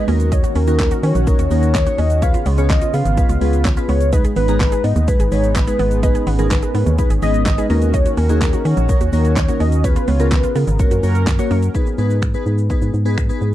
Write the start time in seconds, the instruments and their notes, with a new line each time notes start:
0.08 fm bass D#2, analog synth pad D#3 C#4 F#4, synth keys A#3 C#4 D#4 F#4 A#4, synth arpeggio sound C#4, open hi-hat, shaker
0.20 closed hi-hat, shaker
0.32 soft synth lead C#5, synth arpeggio sound D#5, kick, closed hi-hat, shaker
0.44 synth arpeggio sound F#4, closed hi-hat, shaker
0.55 fm bass D#2, synth arpeggio sound C#4, soft synth lead A#4, open hi-hat, shaker
0.67 synth arpeggio sound D#3, synth keys A#3 C#4 D#4 F#4 A#4, closed hi-hat, shaker
0.79 soft synth lead A#4, kick, snare, clap, closed hi-hat, shaker
0.91 synth arpeggio sound F#4, closed hi-hat, shaker
1.03 fm bass D#3, synth arpeggio sound C#4, soft synth lead C#5, open hi-hat, shaker
1.15 fm bass A#1, synth arpeggio sound D#3, closed hi-hat, shaker
1.27 synth keys A#3 C#4 D#4 F#4 A#4, kick, closed hi-hat, shaker
1.39 fm bass D#2, synth arpeggio sound F#4, closed hi-hat, shaker
1.50 fm bass D#2, synth keys A#3 C#4 D#4 F#4 A#4, soft synth lead C#5, open hi-hat, shaker
1.63 closed hi-hat, shaker
1.75 synth arpeggio sound D#5, kick, snare, clap, closed hi-hat, shaker
1.86 synth keys A#3 C#4 D#4 F#4 C#5, synth arpeggio sound F#4, closed hi-hat, shaker
1.98 fm bass D#2, synth arpeggio sound C#4, soft synth lead D#5, open hi-hat, shaker
2.10 closed hi-hat, shaker
2.22 analog synth pad C#3 B3 F4, synth keys B3 C#4 F4 G#4 B4, synth arpeggio sound C#5, soft synth lead F5, kick, closed hi-hat, shaker
2.34 synth arpeggio sound F4, closed hi-hat, shaker
2.46 fm bass C#2, synth arpeggio sound B3, soft synth lead C#5, open hi-hat, shaker
2.58 synth arpeggio sound C#3, synth keys B3 C#4 F4 G#4 C#5, closed hi-hat, shaker
2.69 soft synth lead D#5, kick, snare, clap, closed hi-hat, shaker
2.81 synth arpeggio sound F4, closed hi-hat, shaker
2.93 fm bass C#3, synth arpeggio sound B3, soft synth lead F5, open hi-hat, shaker
3.05 fm bass G#1, synth arpeggio sound C#3, closed hi-hat, shaker
3.17 synth keys B3 C#4 F4 G#4 B4, kick, closed hi-hat, shaker
3.29 fm bass C#2, synth arpeggio sound F4, closed hi-hat, shaker
3.41 fm bass C#2, synth keys B3 C#4 F4 G#4 B4, open hi-hat, shaker
3.53 closed hi-hat, shaker
3.65 synth arpeggio sound C#5, kick, snare, clap, closed hi-hat, shaker
3.77 synth keys B3 C#4 F4 G#4 B4, synth arpeggio sound F4, closed hi-hat, shaker
3.89 fm bass C#2, synth arpeggio sound B3, soft synth lead C#5, open hi-hat, shaker
4.01 closed hi-hat, shaker
4.13 synth keys G#3 B3 D#4 G#4 B4, analog synth pad G#3 B3 D#4, soft synth lead B4, synth arpeggio sound D#5, kick, closed hi-hat, shaker
4.25 synth arpeggio sound G#4, closed hi-hat, shaker
4.36 fm bass G#1, synth arpeggio sound B3, soft synth lead B4, open hi-hat, shaker
4.48 synth arpeggio sound D#3, synth keys G#3 B3 D#4 G#4 A#5, closed hi-hat, shaker
4.60 kick, snare, clap, closed hi-hat, shaker
4.72 synth arpeggio sound G#4, closed hi-hat, shaker
4.84 fm bass G#2, synth arpeggio sound B3, soft synth lead D#5, open hi-hat, shaker
4.96 fm bass D#2, synth arpeggio sound D#3, closed hi-hat, shaker
5.08 synth keys G#3 B3 D#4 G#4 B4, soft synth lead B4, kick, closed hi-hat, shaker
5.20 fm bass G#1, synth arpeggio sound G#4, closed hi-hat, shaker
5.31 fm bass G#1, synth keys G#3 B3 D#4 G#4 B4, soft synth lead C#5, open hi-hat, shaker
5.44 closed hi-hat, shaker
5.55 soft synth lead B4, synth arpeggio sound D#5, kick, snare, clap, closed hi-hat, shaker
5.67 synth keys G#3 B3 D#4 G#4 B4, synth arpeggio sound G#4, closed hi-hat, shaker
5.79 fm bass G#1, synth arpeggio sound B3, open hi-hat, shaker
5.91 closed hi-hat, shaker
6.03 synth keys G#3 B3 D#4 G#4 B4, analog synth pad C#4, soft synth lead B4, synth arpeggio sound D#5, kick, closed hi-hat, shaker
6.15 synth arpeggio sound G#4, closed hi-hat, shaker
6.27 fm bass G#1, synth arpeggio sound B3, open hi-hat, shaker
6.39 synth arpeggio sound D#3, synth keys G#3 B3 D#4 G#4 A#4, closed hi-hat, shaker
6.50 soft synth lead B4, kick, snare, clap, closed hi-hat, shaker
6.62 synth arpeggio sound G#4, closed hi-hat, shaker
6.75 fm bass G#2, synth arpeggio sound B3, open hi-hat, shaker
6.86 fm bass D#2, synth arpeggio sound D#3, closed hi-hat, shaker
6.98 synth keys G#3 B3 D#4 G#4 B4, soft synth lead B4, kick, closed hi-hat, shaker
7.10 fm bass G#1, synth arpeggio sound G#4, closed hi-hat, shaker
7.22 fm bass G#1, synth keys G#3 B3 D#4 G#4 B4, soft synth lead D#5, open hi-hat, shaker
7.34 closed hi-hat, shaker
7.46 synth arpeggio sound D#5, kick, snare, clap, closed hi-hat, shaker
7.58 synth keys G#3 B3 D#4 G#4 B4, synth arpeggio sound G#4, closed hi-hat, shaker
7.70 fm bass D#2, analog synth pad D#3 F#4, synth keys A#3 C#4 D#4 F#4 A#4, synth arpeggio sound C#4, open hi-hat, shaker
7.82 closed hi-hat, shaker
7.94 soft synth lead C#5, synth arpeggio sound D#5, kick, closed hi-hat, shaker
8.06 synth arpeggio sound F#4, closed hi-hat, shaker
8.17 fm bass D#2, synth arpeggio sound C#4, soft synth lead A#4, open hi-hat, shaker
8.29 synth arpeggio sound D#3, synth keys A#3 C#4 D#4 F#4 G#4, closed hi-hat, shaker
8.41 soft synth lead A#4, kick, snare, clap, closed hi-hat, shaker
8.53 synth arpeggio sound F#4, closed hi-hat, shaker
8.65 fm bass D#3, synth arpeggio sound C#4, soft synth lead C#5, open hi-hat, shaker
8.77 fm bass A#1, synth arpeggio sound D#3, closed hi-hat, shaker
8.89 synth keys A#3 C#4 D#4 F#4 A#4, kick, closed hi-hat, shaker
9.01 fm bass D#2, synth arpeggio sound F#4, closed hi-hat, shaker
9.13 fm bass D#2, synth keys A#3 C#4 D#4 F#4 A#4, soft synth lead C#5, open hi-hat, shaker
9.25 closed hi-hat, shaker
9.37 synth arpeggio sound D#5, kick, snare, clap, closed hi-hat, shaker
9.48 synth keys A#3 C#4 D#4 F#4 A#4, synth arpeggio sound F#4, closed hi-hat, shaker
9.60 fm bass D#2, synth arpeggio sound C#4, soft synth lead D#5, open hi-hat, shaker
9.72 closed hi-hat, shaker
9.84 analog synth pad C#3 B3 F4, synth keys B3 C#4 F4 G#4 B4, soft synth lead B4, synth arpeggio sound C#5, kick, closed hi-hat, shaker
9.96 synth arpeggio sound F4, closed hi-hat, shaker
10.08 fm bass C#2, synth arpeggio sound B3, soft synth lead C#5, open hi-hat, shaker
10.20 synth arpeggio sound C#3, synth keys B3 C#4 F4 G#4 A#4, closed hi-hat, shaker
10.31 soft synth lead B4, kick, snare, clap, closed hi-hat, shaker
10.43 synth arpeggio sound F4, closed hi-hat, shaker
10.56 fm bass C#3, synth arpeggio sound B3, soft synth lead A#4, open hi-hat, shaker
10.67 fm bass G#1, synth arpeggio sound C#3, closed hi-hat, shaker
10.79 analog synth pad F#3 C#4 A#4, synth keys A#3 C#4 F#4 A#4 C#5, kick, closed hi-hat, shaker
10.91 fm bass F#2, synth arpeggio sound F#4, closed hi-hat, shaker
11.03 fm bass F#2, synth keys A#3 C#4 F#4 A#4 C#5, open hi-hat, shaker
11.15 closed hi-hat, shaker
11.27 synth arpeggio sound C#5, kick, snare, clap, closed hi-hat, shaker
11.39 synth keys A#3 C#4 F#4 A#4 C#5, synth arpeggio sound F#4, closed hi-hat, shaker
11.51 fm bass F#2, synth arpeggio sound A#3, open hi-hat, shaker
11.62 closed hi-hat, shaker
11.74 synth keys B3 D#4 G#4 B4, kick, shaker
11.86 shaker
11.98 fm bass G#2, synth keys B3 D#4 G#4 B4, shaker
12.10 shaker
12.22 finger snap, kick, shaker
12.34 synth keys B3 D#4 G#4 B4, shaker
12.46 fm bass G#2, shaker
12.58 shaker
12.70 synth keys B3 D#4 G#4 B4, kick, shaker
12.82 fm bass G#2, shaker
12.94 fm bass G#2, shaker
13.05 synth keys B3 D#4 G#4 B4, shaker
13.18 finger snap, kick, shaker
13.29 synth keys B3 D#4 G#4 B4, shaker
13.41 fm bass G#2, shaker